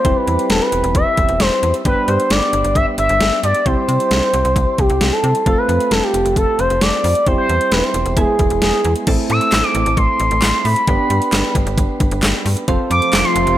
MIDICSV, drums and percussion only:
0, 0, Header, 1, 2, 480
1, 0, Start_track
1, 0, Tempo, 451128
1, 52, Time_signature, 4, 2, 24, 8
1, 14448, End_track
2, 0, Start_track
2, 0, Title_t, "Drums"
2, 51, Note_on_c, 9, 36, 113
2, 51, Note_on_c, 9, 42, 83
2, 157, Note_off_c, 9, 42, 0
2, 158, Note_off_c, 9, 36, 0
2, 293, Note_on_c, 9, 42, 69
2, 399, Note_off_c, 9, 42, 0
2, 416, Note_on_c, 9, 42, 53
2, 522, Note_off_c, 9, 42, 0
2, 529, Note_on_c, 9, 42, 86
2, 533, Note_on_c, 9, 38, 108
2, 636, Note_off_c, 9, 42, 0
2, 640, Note_off_c, 9, 38, 0
2, 770, Note_on_c, 9, 42, 81
2, 876, Note_off_c, 9, 42, 0
2, 891, Note_on_c, 9, 42, 55
2, 998, Note_off_c, 9, 42, 0
2, 1009, Note_on_c, 9, 36, 96
2, 1012, Note_on_c, 9, 42, 71
2, 1116, Note_off_c, 9, 36, 0
2, 1118, Note_off_c, 9, 42, 0
2, 1249, Note_on_c, 9, 42, 68
2, 1251, Note_on_c, 9, 36, 95
2, 1356, Note_off_c, 9, 42, 0
2, 1357, Note_off_c, 9, 36, 0
2, 1368, Note_on_c, 9, 42, 52
2, 1475, Note_off_c, 9, 42, 0
2, 1489, Note_on_c, 9, 38, 112
2, 1493, Note_on_c, 9, 42, 71
2, 1596, Note_off_c, 9, 38, 0
2, 1599, Note_off_c, 9, 42, 0
2, 1734, Note_on_c, 9, 42, 72
2, 1840, Note_off_c, 9, 42, 0
2, 1851, Note_on_c, 9, 42, 55
2, 1957, Note_off_c, 9, 42, 0
2, 1970, Note_on_c, 9, 42, 81
2, 1971, Note_on_c, 9, 36, 111
2, 2076, Note_off_c, 9, 42, 0
2, 2077, Note_off_c, 9, 36, 0
2, 2212, Note_on_c, 9, 42, 73
2, 2319, Note_off_c, 9, 42, 0
2, 2337, Note_on_c, 9, 42, 53
2, 2443, Note_off_c, 9, 42, 0
2, 2451, Note_on_c, 9, 42, 88
2, 2455, Note_on_c, 9, 38, 108
2, 2557, Note_off_c, 9, 42, 0
2, 2562, Note_off_c, 9, 38, 0
2, 2694, Note_on_c, 9, 42, 81
2, 2800, Note_off_c, 9, 42, 0
2, 2814, Note_on_c, 9, 42, 56
2, 2921, Note_off_c, 9, 42, 0
2, 2930, Note_on_c, 9, 36, 93
2, 2934, Note_on_c, 9, 42, 71
2, 3036, Note_off_c, 9, 36, 0
2, 3041, Note_off_c, 9, 42, 0
2, 3170, Note_on_c, 9, 42, 69
2, 3277, Note_off_c, 9, 42, 0
2, 3291, Note_on_c, 9, 42, 53
2, 3398, Note_off_c, 9, 42, 0
2, 3411, Note_on_c, 9, 38, 119
2, 3414, Note_on_c, 9, 42, 73
2, 3517, Note_off_c, 9, 38, 0
2, 3521, Note_off_c, 9, 42, 0
2, 3654, Note_on_c, 9, 42, 73
2, 3761, Note_off_c, 9, 42, 0
2, 3772, Note_on_c, 9, 42, 53
2, 3878, Note_off_c, 9, 42, 0
2, 3893, Note_on_c, 9, 36, 115
2, 3894, Note_on_c, 9, 42, 82
2, 3999, Note_off_c, 9, 36, 0
2, 4000, Note_off_c, 9, 42, 0
2, 4135, Note_on_c, 9, 42, 73
2, 4242, Note_off_c, 9, 42, 0
2, 4257, Note_on_c, 9, 42, 54
2, 4364, Note_off_c, 9, 42, 0
2, 4372, Note_on_c, 9, 42, 84
2, 4376, Note_on_c, 9, 38, 108
2, 4478, Note_off_c, 9, 42, 0
2, 4482, Note_off_c, 9, 38, 0
2, 4613, Note_on_c, 9, 42, 82
2, 4719, Note_off_c, 9, 42, 0
2, 4734, Note_on_c, 9, 42, 55
2, 4841, Note_off_c, 9, 42, 0
2, 4850, Note_on_c, 9, 36, 99
2, 4854, Note_on_c, 9, 42, 72
2, 4957, Note_off_c, 9, 36, 0
2, 4961, Note_off_c, 9, 42, 0
2, 5090, Note_on_c, 9, 42, 68
2, 5091, Note_on_c, 9, 36, 97
2, 5196, Note_off_c, 9, 42, 0
2, 5198, Note_off_c, 9, 36, 0
2, 5209, Note_on_c, 9, 42, 52
2, 5316, Note_off_c, 9, 42, 0
2, 5330, Note_on_c, 9, 38, 117
2, 5333, Note_on_c, 9, 42, 75
2, 5436, Note_off_c, 9, 38, 0
2, 5440, Note_off_c, 9, 42, 0
2, 5573, Note_on_c, 9, 42, 74
2, 5679, Note_off_c, 9, 42, 0
2, 5691, Note_on_c, 9, 42, 52
2, 5797, Note_off_c, 9, 42, 0
2, 5811, Note_on_c, 9, 42, 83
2, 5812, Note_on_c, 9, 36, 111
2, 5918, Note_off_c, 9, 36, 0
2, 5918, Note_off_c, 9, 42, 0
2, 6055, Note_on_c, 9, 42, 70
2, 6161, Note_off_c, 9, 42, 0
2, 6176, Note_on_c, 9, 42, 53
2, 6282, Note_off_c, 9, 42, 0
2, 6291, Note_on_c, 9, 42, 86
2, 6295, Note_on_c, 9, 38, 108
2, 6397, Note_off_c, 9, 42, 0
2, 6401, Note_off_c, 9, 38, 0
2, 6534, Note_on_c, 9, 42, 81
2, 6641, Note_off_c, 9, 42, 0
2, 6657, Note_on_c, 9, 42, 58
2, 6763, Note_off_c, 9, 42, 0
2, 6770, Note_on_c, 9, 36, 95
2, 6775, Note_on_c, 9, 42, 72
2, 6877, Note_off_c, 9, 36, 0
2, 6881, Note_off_c, 9, 42, 0
2, 7011, Note_on_c, 9, 42, 68
2, 7117, Note_off_c, 9, 42, 0
2, 7132, Note_on_c, 9, 42, 55
2, 7238, Note_off_c, 9, 42, 0
2, 7250, Note_on_c, 9, 38, 117
2, 7254, Note_on_c, 9, 42, 74
2, 7357, Note_off_c, 9, 38, 0
2, 7360, Note_off_c, 9, 42, 0
2, 7493, Note_on_c, 9, 46, 76
2, 7599, Note_off_c, 9, 46, 0
2, 7610, Note_on_c, 9, 42, 54
2, 7717, Note_off_c, 9, 42, 0
2, 7730, Note_on_c, 9, 42, 82
2, 7732, Note_on_c, 9, 36, 110
2, 7836, Note_off_c, 9, 42, 0
2, 7838, Note_off_c, 9, 36, 0
2, 7974, Note_on_c, 9, 42, 69
2, 8080, Note_off_c, 9, 42, 0
2, 8095, Note_on_c, 9, 42, 54
2, 8202, Note_off_c, 9, 42, 0
2, 8210, Note_on_c, 9, 42, 88
2, 8214, Note_on_c, 9, 38, 109
2, 8316, Note_off_c, 9, 42, 0
2, 8321, Note_off_c, 9, 38, 0
2, 8451, Note_on_c, 9, 42, 79
2, 8557, Note_off_c, 9, 42, 0
2, 8572, Note_on_c, 9, 42, 57
2, 8679, Note_off_c, 9, 42, 0
2, 8689, Note_on_c, 9, 36, 96
2, 8691, Note_on_c, 9, 42, 73
2, 8796, Note_off_c, 9, 36, 0
2, 8798, Note_off_c, 9, 42, 0
2, 8928, Note_on_c, 9, 42, 69
2, 8931, Note_on_c, 9, 36, 97
2, 9034, Note_off_c, 9, 42, 0
2, 9038, Note_off_c, 9, 36, 0
2, 9048, Note_on_c, 9, 42, 52
2, 9155, Note_off_c, 9, 42, 0
2, 9169, Note_on_c, 9, 38, 120
2, 9173, Note_on_c, 9, 42, 74
2, 9276, Note_off_c, 9, 38, 0
2, 9279, Note_off_c, 9, 42, 0
2, 9412, Note_on_c, 9, 42, 71
2, 9518, Note_off_c, 9, 42, 0
2, 9529, Note_on_c, 9, 42, 54
2, 9636, Note_off_c, 9, 42, 0
2, 9649, Note_on_c, 9, 42, 82
2, 9650, Note_on_c, 9, 49, 96
2, 9652, Note_on_c, 9, 36, 110
2, 9756, Note_off_c, 9, 42, 0
2, 9756, Note_off_c, 9, 49, 0
2, 9758, Note_off_c, 9, 36, 0
2, 9892, Note_on_c, 9, 42, 69
2, 9999, Note_off_c, 9, 42, 0
2, 10013, Note_on_c, 9, 42, 54
2, 10119, Note_off_c, 9, 42, 0
2, 10129, Note_on_c, 9, 42, 90
2, 10133, Note_on_c, 9, 38, 109
2, 10133, Note_on_c, 9, 39, 90
2, 10235, Note_off_c, 9, 42, 0
2, 10239, Note_off_c, 9, 38, 0
2, 10239, Note_off_c, 9, 39, 0
2, 10370, Note_on_c, 9, 42, 86
2, 10477, Note_off_c, 9, 42, 0
2, 10493, Note_on_c, 9, 42, 58
2, 10599, Note_off_c, 9, 42, 0
2, 10609, Note_on_c, 9, 36, 98
2, 10612, Note_on_c, 9, 42, 72
2, 10716, Note_off_c, 9, 36, 0
2, 10718, Note_off_c, 9, 42, 0
2, 10848, Note_on_c, 9, 42, 70
2, 10955, Note_off_c, 9, 42, 0
2, 10969, Note_on_c, 9, 42, 55
2, 11076, Note_off_c, 9, 42, 0
2, 11089, Note_on_c, 9, 38, 115
2, 11089, Note_on_c, 9, 39, 97
2, 11092, Note_on_c, 9, 42, 75
2, 11195, Note_off_c, 9, 38, 0
2, 11195, Note_off_c, 9, 39, 0
2, 11199, Note_off_c, 9, 42, 0
2, 11332, Note_on_c, 9, 46, 76
2, 11438, Note_off_c, 9, 46, 0
2, 11450, Note_on_c, 9, 42, 54
2, 11556, Note_off_c, 9, 42, 0
2, 11570, Note_on_c, 9, 42, 84
2, 11571, Note_on_c, 9, 36, 111
2, 11677, Note_off_c, 9, 42, 0
2, 11678, Note_off_c, 9, 36, 0
2, 11812, Note_on_c, 9, 42, 75
2, 11918, Note_off_c, 9, 42, 0
2, 11935, Note_on_c, 9, 42, 53
2, 12041, Note_off_c, 9, 42, 0
2, 12048, Note_on_c, 9, 42, 90
2, 12053, Note_on_c, 9, 38, 110
2, 12053, Note_on_c, 9, 39, 92
2, 12155, Note_off_c, 9, 42, 0
2, 12159, Note_off_c, 9, 38, 0
2, 12159, Note_off_c, 9, 39, 0
2, 12290, Note_on_c, 9, 36, 92
2, 12292, Note_on_c, 9, 42, 85
2, 12396, Note_off_c, 9, 36, 0
2, 12399, Note_off_c, 9, 42, 0
2, 12414, Note_on_c, 9, 42, 57
2, 12520, Note_off_c, 9, 42, 0
2, 12530, Note_on_c, 9, 36, 99
2, 12534, Note_on_c, 9, 42, 74
2, 12636, Note_off_c, 9, 36, 0
2, 12640, Note_off_c, 9, 42, 0
2, 12770, Note_on_c, 9, 42, 70
2, 12771, Note_on_c, 9, 36, 97
2, 12876, Note_off_c, 9, 42, 0
2, 12878, Note_off_c, 9, 36, 0
2, 12890, Note_on_c, 9, 42, 56
2, 12996, Note_off_c, 9, 42, 0
2, 13010, Note_on_c, 9, 38, 121
2, 13010, Note_on_c, 9, 39, 98
2, 13013, Note_on_c, 9, 42, 73
2, 13116, Note_off_c, 9, 38, 0
2, 13116, Note_off_c, 9, 39, 0
2, 13120, Note_off_c, 9, 42, 0
2, 13254, Note_on_c, 9, 46, 75
2, 13361, Note_off_c, 9, 46, 0
2, 13372, Note_on_c, 9, 42, 55
2, 13478, Note_off_c, 9, 42, 0
2, 13491, Note_on_c, 9, 42, 87
2, 13492, Note_on_c, 9, 36, 112
2, 13597, Note_off_c, 9, 42, 0
2, 13598, Note_off_c, 9, 36, 0
2, 13733, Note_on_c, 9, 42, 73
2, 13840, Note_off_c, 9, 42, 0
2, 13854, Note_on_c, 9, 42, 54
2, 13960, Note_off_c, 9, 42, 0
2, 13969, Note_on_c, 9, 42, 90
2, 13973, Note_on_c, 9, 38, 116
2, 13973, Note_on_c, 9, 39, 94
2, 14075, Note_off_c, 9, 42, 0
2, 14079, Note_off_c, 9, 38, 0
2, 14079, Note_off_c, 9, 39, 0
2, 14211, Note_on_c, 9, 42, 87
2, 14318, Note_off_c, 9, 42, 0
2, 14332, Note_on_c, 9, 42, 58
2, 14438, Note_off_c, 9, 42, 0
2, 14448, End_track
0, 0, End_of_file